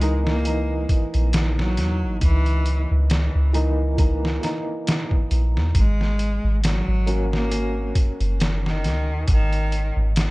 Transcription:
0.00 0.86 C#2 medium
0.00 0.40 E3 medium
0.00 0.18 G#3 loud
0.00 0.41 A#3 medium
0.00 0.41 D#4 loud
0.00 closed hi-hat medium
0.26 0.84 A#3 loud
0.26 snare medium
0.44 3.49 E3 medium
0.44 3.50 A#3 medium
0.44 3.50 D#4 medium
0.44 closed hi-hat medium
0.89 kick loud
0.89 closed hi-hat medium
1.14 1.79 A#1 medium
1.14 closed hi-hat soft
1.33 snare loud
1.33 closed hi-hat medium
1.59 2.17 F#3 loud
1.59 snare medium
1.77 2.05 E2 medium
1.77 snare soft
1.77 closed hi-hat medium
2.03 2.20 G#1 medium
2.21 2.86 C#2 loud
2.21 2.84 E3 loud
2.21 kick loud
2.21 closed hi-hat medium
2.46 closed hi-hat soft
2.66 closed hi-hat medium
2.91 3.29 C#2 medium
3.10 snare loud
3.10 closed hi-hat medium
3.35 4.39 C#2 medium
3.53 3.93 E3 medium
3.53 3.94 A#3 medium
3.53 3.94 D#4 loud
3.53 closed hi-hat medium
3.97 4.38 E3 medium
3.97 4.38 A#3 medium
3.97 4.39 D#4 medium
3.97 kick loud
3.97 closed hi-hat medium
4.25 snare medium
4.41 5.72 E3 medium
4.41 5.72 A#3 medium
4.41 5.73 D#4 medium
4.41 snare soft
4.41 closed hi-hat medium
4.87 snare loud
4.87 closed hi-hat medium
5.11 kick medium
5.31 5.58 A#1 medium
5.31 closed hi-hat medium
5.56 5.73 E2 medium
5.56 snare soft
5.75 6.39 G#1 loud
5.75 6.56 G#3 loud
5.75 kick loud
5.75 closed hi-hat medium
6.01 snare soft
6.19 closed hi-hat medium
6.44 6.82 G#1 loud
6.64 7.25 F#3 medium
6.64 snare loud
6.64 closed hi-hat medium
6.88 7.92 G#1 medium
7.06 7.46 A#3 medium
7.06 7.47 C#4 medium
7.06 7.47 F#4 loud
7.06 closed hi-hat medium
7.33 7.90 A#3 medium
7.33 snare medium
7.50 10.31 A#3 medium
7.50 10.31 C#4 medium
7.50 10.31 F#4 medium
7.50 closed hi-hat medium
7.95 kick loud
7.95 closed hi-hat medium
8.21 8.85 F#1 medium
8.21 closed hi-hat soft
8.40 snare loud
8.40 closed hi-hat medium
8.66 9.23 D#3 medium
8.66 snare medium
8.84 9.10 C#2 medium
8.84 snare soft
8.84 closed hi-hat medium
9.09 9.26 D#2 medium
9.28 9.92 G#1 loud
9.28 9.90 D#3 loud
9.28 kick loud
9.28 closed hi-hat medium
9.53 closed hi-hat soft
9.72 closed hi-hat medium
9.97 10.31 G#1 medium
10.16 snare loud
10.16 closed hi-hat medium

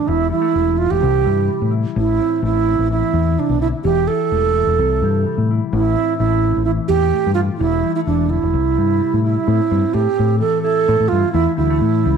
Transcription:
0.06 0.30 E1 loud
0.06 2.90 E3 medium
0.06 0.31 E4 medium
0.30 0.42 G3 medium
0.30 0.79 E4 medium
0.42 0.51 A3 medium
0.52 0.89 E1 medium
0.52 0.98 A3 medium
0.76 1.25 E4 soft
0.76 0.92 F4 medium
0.91 1.02 E1 medium
0.91 1.73 G4 loud
1.00 1.25 C2 loud
1.00 1.93 C3 medium
1.25 1.48 G2 medium
1.25 1.71 E4 medium
1.48 1.96 G3 medium
1.62 1.84 A2 medium
1.71 2.20 E4 medium
1.95 2.18 A1 medium
1.95 3.37 A2 medium
1.95 2.42 E4 medium
2.20 2.66 C4 medium
2.42 2.77 A1 medium
2.42 3.82 A3 medium
2.42 2.88 E4 medium
2.67 3.85 C4 medium
2.79 3.01 A1 medium
2.91 3.60 E3 medium
2.91 3.41 E4 medium
3.13 3.36 E2 medium
3.38 3.61 C3 medium
3.38 3.61 D4 medium
3.49 3.72 B1 medium
3.61 3.84 D3 medium
3.61 3.67 E4 loud
3.84 4.07 E1 loud
3.84 6.67 E3 medium
3.84 4.09 G4 loud
4.07 4.55 E4 medium
4.07 5.49 A4 loud
4.32 4.65 E1 medium
4.32 4.76 A3 medium
4.55 5.50 E4 medium
4.67 4.78 E1 medium
4.79 5.01 C2 loud
4.79 5.70 C3 medium
5.02 5.24 G2 medium
5.02 5.71 G4 medium
5.26 5.73 G3 medium
5.38 5.60 A2 medium
5.51 5.97 E4 medium
5.73 5.95 A1 loud
5.73 7.61 A2 medium
5.73 6.17 E4 medium
5.98 6.43 C4 medium
6.18 6.53 A1 medium
6.18 7.13 A3 medium
6.18 6.62 E4 medium
6.44 7.61 C4 soft
6.57 6.78 A1 medium
6.65 7.59 E3 medium
6.65 6.71 E4 medium
6.88 7.11 E2 medium
6.88 7.33 G4 loud
7.14 7.58 A3 medium
7.26 7.48 G2 medium
7.34 7.40 F4 loud
7.57 7.82 E1 loud
7.57 8.06 E3 medium
7.57 7.92 E4 medium
7.83 7.97 G3 medium
7.95 8.54 A3 soft
7.95 8.00 E4 medium
8.07 8.40 E1 medium
8.07 8.30 E3 medium
8.07 8.31 D4 medium
8.30 8.54 D3 medium
8.30 9.23 E4 medium
8.43 8.53 E1 medium
8.54 8.76 C2 loud
8.54 9.45 C3 medium
8.77 9.00 G2 medium
8.77 8.98 G3 medium
8.99 9.47 G3 medium
9.14 9.35 A2 medium
9.24 9.95 E4 medium
9.24 9.45 E4 medium
9.47 11.34 A2 medium
9.47 9.59 A2 loud
9.47 9.70 C4 medium
9.71 9.83 G2 medium
9.71 10.16 C4 medium
9.93 10.06 A2 medium
9.93 10.87 A3 medium
9.93 10.39 G4 medium
10.17 10.41 A2 medium
10.17 11.35 C4 medium
10.40 11.33 E3 medium
10.40 10.62 A4 medium
10.62 11.10 E4 medium
10.62 11.10 A4 loud
10.88 10.99 A2 loud
10.88 11.32 A3 medium
11.00 11.11 A2 medium
11.08 11.23 G2 medium
11.08 12.17 E4 medium
11.08 11.32 F4 loud
11.33 11.46 E2 loud
11.33 12.17 E3 medium
11.33 11.56 A3 medium
11.33 11.55 E4 loud
11.57 11.80 D2 medium
11.57 11.70 G3 medium
11.57 12.17 E4 medium
11.70 11.80 A3 medium
11.81 12.03 A2 medium
11.81 12.03 A3 medium
12.04 12.17 C#2 medium
12.04 12.16 G3 medium

